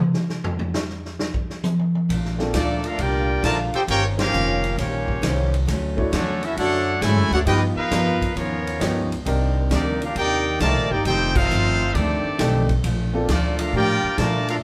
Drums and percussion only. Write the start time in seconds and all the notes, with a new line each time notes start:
0.14 snare
0.29 snare
0.44 floor tom
0.59 floor tom
0.74 snare, hi-hat pedal
0.90 snare
1.05 snare
1.19 snare
1.34 kick
1.50 snare
1.64 hi-hat pedal, high tom
1.79 high tom
1.95 high tom
2.09 kick, ride
2.25 snare
2.39 snare
2.54 kick, snare, hi-hat pedal, ride
2.84 ride
2.98 kick, ride
3.43 kick, snare, hi-hat pedal, ride
3.74 ride
3.88 kick, ride
4.19 snare, ride
4.33 hi-hat pedal
4.64 ride
4.78 kick, snare, ride
5.08 kick
5.22 kick, snare, hi-hat pedal, ride
5.54 ride
5.68 kick, snare, ride
5.98 kick
6.12 kick, snare, hi-hat pedal, ride
6.43 ride
6.57 kick, ride
7.01 kick, snare, hi-hat pedal, ride
7.32 ride
7.46 kick, ride
7.91 kick, snare, hi-hat pedal, ride
8.22 kick, ride
8.36 kick, ride
8.67 ride
8.81 kick, snare, hi-hat pedal, ride
9.12 ride
9.26 kick, ride
9.71 kick, snare, hi-hat pedal, ride
10.02 ride
10.15 kick, ride
10.60 kick, snare, hi-hat pedal, ride
11.05 kick, ride
11.35 kick, crash
11.50 hi-hat pedal
11.95 kick, ride
12.39 kick, snare, hi-hat pedal, ride
12.69 kick, ride
12.84 kick, ride
13.28 kick, snare, hi-hat pedal, ride
13.59 ride
13.73 kick
14.18 kick, snare, hi-hat pedal, ride
14.48 ride